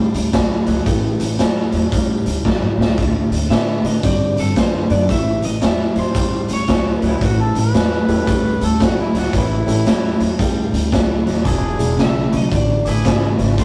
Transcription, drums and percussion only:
0.14 closed hi-hat medium
0.33 kick medium
0.33 snare loud
0.33 closed hi-hat medium
0.67 closed hi-hat medium
0.86 kick loud
0.86 closed hi-hat medium
1.20 closed hi-hat medium
1.39 snare loud
1.39 closed hi-hat medium
1.72 closed hi-hat medium
1.92 kick loud
1.92 closed hi-hat medium
2.26 closed hi-hat medium
2.45 kick medium
2.45 snare medium
2.63 mid tom medium
2.81 snare loud
2.98 kick loud
2.98 closed hi-hat medium
3.32 closed hi-hat medium
3.51 snare medium
3.51 closed hi-hat medium
3.85 closed hi-hat medium
4.03 kick loud
4.03 closed hi-hat medium
4.37 closed hi-hat medium
4.56 kick medium
4.56 snare loud
4.56 closed hi-hat medium
4.90 closed hi-hat medium
5.09 kick loud
5.09 closed hi-hat medium
5.42 closed hi-hat medium
5.62 snare loud
5.62 closed hi-hat medium
5.96 closed hi-hat medium
6.15 kick loud
6.15 closed hi-hat medium
6.49 closed hi-hat medium
6.68 kick medium
6.68 snare loud
6.68 closed hi-hat medium
7.02 closed hi-hat soft
7.21 kick loud
7.21 closed hi-hat medium
7.55 closed hi-hat medium
7.74 snare loud
7.74 closed hi-hat medium
8.08 closed hi-hat medium
8.27 kick loud
8.27 closed hi-hat medium
8.61 closed hi-hat medium
8.80 kick medium
8.80 snare loud
8.80 closed hi-hat medium
9.15 snare soft
9.15 closed hi-hat medium
9.33 kick loud
9.33 closed hi-hat medium
9.68 closed hi-hat medium
9.86 snare medium
9.86 closed hi-hat medium
10.20 closed hi-hat medium
10.39 kick loud
10.39 closed hi-hat medium
10.74 closed hi-hat medium
10.92 kick medium
10.92 snare loud
10.92 closed hi-hat medium
11.27 snare soft
11.27 closed hi-hat medium
11.45 kick medium
11.45 closed hi-hat medium
11.79 closed hi-hat medium
11.99 snare loud
11.99 closed hi-hat medium
12.33 closed hi-hat medium
12.52 kick loud
12.52 closed hi-hat medium
12.86 closed hi-hat medium
13.05 kick medium
13.05 snare loud
13.05 closed hi-hat medium
13.39 snare soft
13.39 closed hi-hat medium
13.58 kick medium
13.58 closed hi-hat medium

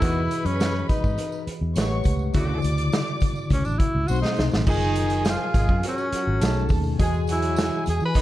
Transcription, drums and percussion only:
0.02 kick loud
0.02 closed hi-hat loud
0.02 tambourine medium
0.31 closed hi-hat medium
0.31 tambourine soft
0.46 closed hi-hat soft
0.60 snare loud
0.60 closed hi-hat medium
0.60 tambourine medium
0.89 kick loud
0.89 closed hi-hat medium
0.89 tambourine soft
1.04 kick medium
1.04 tambourine soft
1.18 closed hi-hat medium
1.18 tambourine soft
1.32 tambourine soft
1.47 closed hi-hat medium
1.76 snare loud
1.76 closed hi-hat medium
1.76 tambourine medium
2.04 kick medium
2.04 closed hi-hat medium
2.04 tambourine soft
2.19 tambourine soft
2.34 kick loud
2.34 closed hi-hat medium
2.34 tambourine medium
2.62 closed hi-hat medium
2.62 tambourine medium
2.78 closed hi-hat soft
2.78 tambourine soft
2.92 snare loud
2.92 closed hi-hat medium
2.92 tambourine medium
3.20 kick medium
3.20 closed hi-hat medium
3.20 tambourine soft
3.36 tambourine soft
3.50 kick medium
3.50 closed hi-hat medium
3.50 tambourine soft
3.65 tambourine soft
3.80 kick medium
3.80 closed hi-hat medium
4.08 tambourine medium
4.25 snare medium
4.37 snare medium
4.37 tambourine soft
4.52 snare medium
4.52 tambourine soft
4.66 kick loud
4.66 crash loud
4.66 tambourine medium
4.82 tambourine soft
4.96 closed hi-hat medium
4.96 tambourine soft
5.10 closed hi-hat soft
5.10 tambourine soft
5.25 snare loud
5.25 closed hi-hat medium
5.25 tambourine medium
5.54 kick loud
5.54 closed hi-hat medium
5.54 tambourine soft
5.69 kick medium
5.83 closed hi-hat medium
5.83 tambourine soft
5.98 tambourine soft
6.12 closed hi-hat medium
6.41 snare loud
6.41 closed hi-hat medium
6.41 tambourine medium
6.69 kick loud
6.69 open hi-hat soft
6.69 tambourine soft
6.84 tambourine soft
6.99 kick loud
6.99 closed hi-hat loud
6.99 tambourine medium
7.14 tambourine soft
7.27 closed hi-hat medium
7.27 tambourine medium
7.42 closed hi-hat medium
7.56 snare loud
7.56 closed hi-hat medium
7.56 tambourine medium
7.86 closed hi-hat medium
7.86 tambourine medium
8.00 tambourine soft
8.14 kick medium
8.14 closed hi-hat medium
8.14 tambourine soft

